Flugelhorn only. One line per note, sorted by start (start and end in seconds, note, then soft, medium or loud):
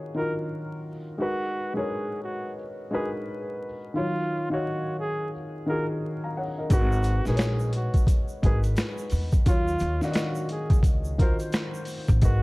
0.17 0.35 A#4 medium
1.20 1.77 F#4 loud
1.75 2.20 G#4 medium
2.23 2.54 F#4 medium
2.92 3.11 G#4 medium
3.96 4.48 F4 loud
4.52 4.96 F#4 medium
4.99 5.30 G#4 medium
5.68 5.87 A#4 medium
6.72 7.23 F#4 loud
7.27 7.71 G#4 medium
7.75 8.06 F#4 medium
8.44 8.62 G#4 medium
9.47 9.99 F4 loud
10.03 10.48 F#4 medium
10.51 10.82 G#4 medium
11.20 11.38 A#4 medium
12.24 12.43 F#4 loud